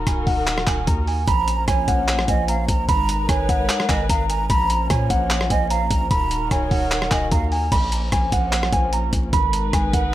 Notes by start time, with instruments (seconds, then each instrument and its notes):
Already playing: string section D#3 D#4 F#4 A#4
0.07 808-style bass C#1, synth keys G#5, kick, cross-stick, closed hi-hat
0.26 808-style bass D#1, synth keys F#5, kick, open hi-hat
0.47 clap, closed hi-hat
0.58 cross-stick
0.67 808-style bass D#1, synth keys G#5, kick, clap, closed hi-hat
0.87 808-style bass D#2, synth keys A#5, kick, closed hi-hat
1.07 synth keys G#5, open hi-hat
1.27 808-style bass A#1, string section F3 A#3 C#4, flute A#5, synth keys B5, kick, closed hi-hat
1.48 synth keys A#5, closed hi-hat
1.68 808-style bass A#1, flute C#5, synth keys G#5, kick, cross-stick, closed hi-hat
1.88 808-style bass A#1, synth keys F#5, kick, closed hi-hat
2.08 clap, closed hi-hat
2.19 cross-stick
2.28 808-style bass A#1, flute D#5, synth keys G#5, kick, closed hi-hat
2.48 flute F5, synth keys A#5, closed hi-hat
2.68 808-style bass A#1, flute A#5, kick, closed hi-hat
2.89 808-style bass G#1, string section G#3 D#4 A#4 B4, flute A#5, synth keys B5, kick, closed hi-hat
3.09 synth keys A#5, closed hi-hat
3.29 808-style bass G#1, flute C#5, synth keys G#5, kick, cross-stick, closed hi-hat
3.49 808-style bass G#1, synth keys F#5, kick, closed hi-hat
3.69 clap, closed hi-hat
3.80 cross-stick
3.89 808-style bass G#1, flute D#5, synth keys G#5, kick, clap, closed hi-hat
4.09 808-style bass G#1, flute F5, synth keys A#5, kick, closed hi-hat
4.30 synth keys G#5, flute A#5, closed hi-hat
4.49 808-style bass A#1, string section F3 A#3 C#4, flute A#5, synth keys B5, kick, closed hi-hat
4.70 synth keys A#5, closed hi-hat
4.90 808-style bass A#2, flute C#5, synth keys G#5, kick, cross-stick, closed hi-hat
5.10 808-style bass A#1, synth keys F#5, kick, closed hi-hat
5.30 clap, closed hi-hat
5.41 cross-stick
5.50 808-style bass A#1, flute D#5, synth keys G#5, kick, closed hi-hat
5.70 flute F5, synth keys A#5, closed hi-hat
5.91 808-style bass A#1, flute A#5, kick, closed hi-hat
6.11 808-style bass D#1, string section D#3 D#4 F#4 A#4, flute A#5, synth keys B5, kick, closed hi-hat
6.31 synth keys A#5, closed hi-hat
6.51 808-style bass C#1, flute C#5, synth keys G#5, kick, cross-stick, closed hi-hat
6.71 808-style bass D#1, synth keys F#5, kick, open hi-hat
6.91 clap, closed hi-hat
7.02 cross-stick
7.11 808-style bass D#1, flute D#5, synth keys G#5, kick, clap, closed hi-hat
7.32 808-style bass D#2, flute F5, synth keys A#5, kick, closed hi-hat
7.52 synth keys G#5, flute A#5, open hi-hat
7.72 808-style bass A#1, string section F3 A#3 C#4, synth keys B5, kick, closed hi-hat, crash
7.92 synth keys A#5, closed hi-hat
8.12 808-style bass A#1, synth keys G#5, kick, cross-stick, closed hi-hat
8.32 808-style bass A#1, synth keys F#5, kick, closed hi-hat
8.52 clap, closed hi-hat
8.63 cross-stick
8.73 808-style bass A#1, synth keys G#5, kick, closed hi-hat
8.93 synth keys A#5, closed hi-hat
9.13 808-style bass A#1, kick, closed hi-hat
9.33 808-style bass G#1, string section G#3 D#4 A#4 B4, synth keys B5, kick, closed hi-hat
9.53 synth keys A#5, closed hi-hat
9.73 808-style bass G#1, synth keys G#5, kick, cross-stick, closed hi-hat
9.93 808-style bass G#1, synth keys F#5, kick, closed hi-hat